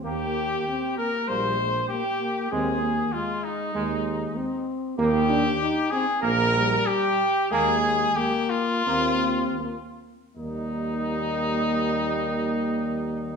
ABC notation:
X:1
M:4/4
L:1/8
Q:1/4=94
K:Eb
V:1 name="Cornet"
G3 B c2 G2 | A2 F E4 z | G3 A B2 G2 | A2 G F4 z |
E8 |]
V:2 name="Flugelhorn"
G3 B c2 G2 | A2 F E4 z | G3 A B2 G2 | A2 G F4 z |
E8 |]
V:3 name="French horn"
B,2 C B, G, A, B, B, | C B, A,2 A,2 C2 | B, D E C B, G,2 z | A,2 B,2 C2 B, z |
B,8 |]
V:4 name="Trombone"
B, z3 B, z3 | A, z3 A, z3 | B, z3 B, z3 | B, z3 B, z3 |
G,8 |]
V:5 name="Tuba" clef=bass
E,,2 z2 B,,,2 z2 | E,,2 z2 E,,2 z2 | E,,2 z2 B,,,2 z2 | E,,2 z2 E,,2 z2 |
E,,8 |]